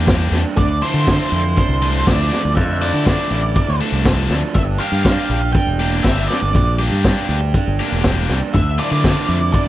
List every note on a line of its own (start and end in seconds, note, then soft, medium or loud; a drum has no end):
0.00 0.29 E2 medium
0.00 0.58 A#3 medium
0.00 0.33 D4 medium
0.00 0.57 G4 medium
0.07 0.58 G3 medium
0.07 0.40 A#3 medium
0.07 0.40 D4 medium
0.07 0.41 G4 medium
0.07 kick loud
0.07 snare medium
0.07 closed hi-hat medium
0.31 0.43 E2 medium
0.31 0.85 D4 medium
0.31 snare medium
0.31 closed hi-hat soft
0.57 0.80 D2 medium
0.57 1.82 D3 medium
0.57 0.80 D5 medium
0.57 kick medium
0.57 closed hi-hat medium
0.82 1.06 F3 medium
0.82 1.07 A3 medium
0.82 1.07 D4 medium
0.82 1.31 E4 medium
0.82 1.07 A4 medium
0.82 1.55 C5 medium
0.82 closed hi-hat medium
0.94 1.17 D3 medium
1.06 1.40 F3 medium
1.06 1.40 A3 medium
1.06 1.56 D4 medium
1.06 1.40 D4 medium
1.06 1.40 A4 medium
1.06 kick loud
1.06 snare loud
1.06 closed hi-hat medium
1.32 1.55 F2 medium
1.32 2.57 E4 medium
1.32 closed hi-hat soft
1.56 2.32 D4 medium
1.56 2.08 C5 medium
1.56 kick loud
1.56 closed hi-hat medium
1.69 2.03 C2 medium
1.82 2.06 F3 medium
1.82 3.06 A3 medium
1.82 2.07 A3 medium
1.82 2.07 D4 medium
1.82 2.07 A4 medium
1.82 closed hi-hat medium
2.06 2.30 D2 medium
2.06 3.31 F3 medium
2.06 2.40 F3 medium
2.06 2.40 A3 medium
2.06 2.40 D4 medium
2.06 2.40 A4 medium
2.06 2.55 D5 medium
2.06 kick loud
2.06 snare loud
2.06 closed hi-hat medium
2.32 3.06 D4 medium
2.32 snare medium
2.32 closed hi-hat medium
2.45 2.57 D2 medium
2.56 2.91 F2 medium
2.56 3.81 D3 medium
2.56 2.82 E5 medium
2.56 kick medium
2.56 closed hi-hat medium
2.82 3.05 F3 medium
2.82 3.05 A3 medium
2.82 3.06 D4 medium
2.82 3.30 E4 medium
2.82 3.06 A4 medium
2.82 3.78 D5 medium
2.82 closed hi-hat medium
2.94 3.16 D3 medium
3.06 3.39 F3 medium
3.06 3.39 A3 medium
3.06 3.56 D4 medium
3.06 3.39 D4 medium
3.06 3.39 A4 medium
3.06 kick medium
3.06 snare loud
3.06 closed hi-hat medium
3.31 3.54 A1 medium
3.31 4.56 E4 medium
3.31 closed hi-hat medium
3.55 4.30 D4 medium
3.55 kick loud
3.55 closed hi-hat medium
3.68 3.80 D2 medium
3.81 4.05 F3 medium
3.81 4.56 A3 medium
3.81 4.05 A3 medium
3.81 4.05 D4 medium
3.81 4.06 A4 medium
3.81 closed hi-hat medium
3.92 4.27 C2 medium
4.06 4.38 F3 medium
4.06 4.56 F3 medium
4.06 4.39 A3 medium
4.06 4.39 D4 medium
4.06 4.39 A4 medium
4.06 kick loud
4.06 snare loud
4.06 closed hi-hat medium
4.30 4.42 D2 medium
4.30 5.06 D4 medium
4.30 snare medium
4.30 closed hi-hat medium
4.55 4.78 G1 medium
4.55 5.80 G2 medium
4.55 4.61 E5 medium
4.55 kick loud
4.55 closed hi-hat medium
4.79 5.04 A#3 medium
4.79 5.04 D4 medium
4.79 5.05 G4 medium
4.79 5.29 G4 medium
4.79 5.51 F5 medium
4.79 closed hi-hat medium
4.92 5.15 G2 medium
5.05 5.38 A#3 medium
5.05 5.38 D4 medium
5.05 5.54 D4 medium
5.05 5.38 G4 medium
5.05 kick loud
5.05 snare loud
5.05 closed hi-hat medium
5.29 5.53 A#1 medium
5.29 6.55 G4 medium
5.29 closed hi-hat soft
5.53 6.30 D4 medium
5.53 6.05 G5 medium
5.53 kick loud
5.53 closed hi-hat medium
5.67 6.01 E1 medium
5.79 7.04 A#3 medium
5.79 6.03 A#3 medium
5.79 6.04 D4 medium
5.79 6.04 G4 medium
5.79 closed hi-hat medium
6.03 6.27 G1 medium
6.03 7.30 G3 medium
6.03 6.37 A#3 medium
6.03 6.37 D4 medium
6.03 6.38 G4 medium
6.03 6.28 E5 medium
6.03 kick loud
6.03 snare medium
6.03 closed hi-hat medium
6.28 7.04 D4 medium
6.28 6.75 D5 medium
6.28 snare medium
6.28 closed hi-hat soft
6.42 6.55 G1 medium
6.55 6.89 A#1 medium
6.55 7.79 G2 medium
6.55 kick medium
6.55 closed hi-hat medium
6.79 7.03 A#3 medium
6.79 7.03 D4 medium
6.79 7.04 G4 medium
6.79 7.28 G4 medium
6.79 closed hi-hat medium
6.92 7.15 G2 medium
7.04 7.37 A#3 medium
7.04 7.37 D4 medium
7.04 7.53 D4 medium
7.04 7.37 G4 medium
7.04 kick loud
7.04 snare loud
7.04 closed hi-hat medium
7.29 7.52 D2 medium
7.29 8.54 G4 medium
7.29 closed hi-hat medium
7.54 8.28 D4 medium
7.54 kick loud
7.54 closed hi-hat medium
7.68 7.79 G1 medium
7.79 8.54 A#3 medium
7.79 8.02 A#3 medium
7.79 8.03 D4 medium
7.79 8.04 G4 loud
7.79 closed hi-hat medium
7.92 8.26 E1 medium
8.04 8.54 G3 medium
8.04 8.36 A#3 medium
8.04 8.37 D4 medium
8.04 8.37 G4 medium
8.04 kick loud
8.04 snare loud
8.04 closed hi-hat medium
8.29 8.41 C2 loud
8.29 8.54 D4 medium
8.29 snare medium
8.29 closed hi-hat medium
8.54 8.77 D2 medium
8.54 9.68 D3 medium
8.54 8.79 E5 medium
8.54 kick loud
8.54 closed hi-hat medium
8.78 9.03 F3 medium
8.78 9.03 A3 medium
8.78 9.04 D4 medium
8.78 9.27 E4 medium
8.78 9.04 F4 medium
8.78 9.52 D5 medium
8.78 closed hi-hat medium
8.91 9.14 D3 medium
9.04 9.37 F3 medium
9.04 9.37 A3 medium
9.04 9.52 D4 medium
9.04 9.37 D4 medium
9.04 9.37 F4 medium
9.04 kick loud
9.04 snare loud
9.04 closed hi-hat medium
9.29 9.52 F2 medium
9.29 9.68 E4 medium
9.29 closed hi-hat soft
9.53 9.68 D4 medium
9.53 9.68 D5 medium
9.53 kick loud
9.53 closed hi-hat medium